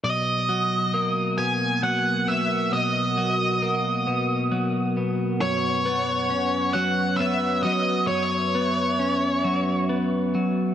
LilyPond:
<<
  \new Staff \with { instrumentName = "Lead electric guitar" } { \time 6/8 \key b \major \tempo 4. = 45 dis''4. gis''8 fis''8 e''8 | dis''2~ dis''8 r8 | cis''4. fis''8 e''8 dis''8 | cis''2 r4 | }
  \new Staff \with { instrumentName = "Analog synth pad" } { \time 6/8 \key b \major << { fis''2.~ | fis''2. | fis''2. | e''2. | } \\ { <fis' ais'>2.~ | <fis' ais'>2. | <b' cis''>2.~ | <b' cis''>2. | } >> }
  \new Staff \with { instrumentName = "Clean electric guitar" } { \clef bass \time 6/8 \key b \major b,,8 fis8 ais8 b,8 fis8 b,8 | b,,8 fis8 ais8 b,8 fis8 b,8 | fis,8 b8 cis'8 fis8 b8 fis8 | fis,8 b8 cis'8 fis8 b8 fis8 | }
>>